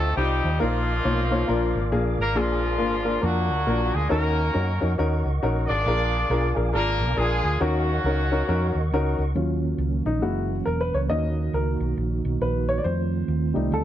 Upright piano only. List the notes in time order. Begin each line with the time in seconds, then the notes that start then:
0.17 C4 D#4 F4 G4
0.60 A#2 A#3 D#4 F4 A#4
1.04 A#3 D#4 F4 C#5
1.31 A#3 D#4 F4 C#5
1.48 A#2 A#3 D4 F4 A#4
1.92 A#3 D4 F4 G#4
2.35 A#2 A#3 D4 F4 G#4
2.78 A#3 D4 F4 A#4
3.05 A#3 D4 F4 A#4
3.21 A#3 D4 F4 A#4
3.66 A#3 D4 F4 A#4
4.09 D#3 C#4 D#4 F#4 A#4
4.54 C#4 D#4 F#4 A#4
4.81 C#4 D#4 F#4 A#4
4.98 C#4 D#4 F#4 A#4
5.43 C#4 D#4 F#4 A#4
5.87 A#2 D4 F4 G#4 A#4
6.30 D4 F4 G#4 A#4
6.56 D4 F4 G#4 A#4
6.72 D4 F4 G#4 A#4
7.16 D4 F4 G#4 A#4
7.60 D#3 C#4 D#4 F#4 A#4
8.06 C#4 D#4 F#4 A#4
8.32 C#4 D#4 F#4 A#4
8.48 C#4 D#4 F#4 A#4
8.93 C#4 D#4 F#4 A#4
9.35 F#3 C#4 F4
10.06 D#4
10.22 G#3 A#3 E4 F#4
10.66 A#4
10.81 B4
10.94 C#5
11.09 A#3 C#4 D#4 D#5
11.54 A#4
12.42 B4
12.69 C#5
12.78 D5
12.84 C5
13.54 G3 A3 D#4
13.74 A4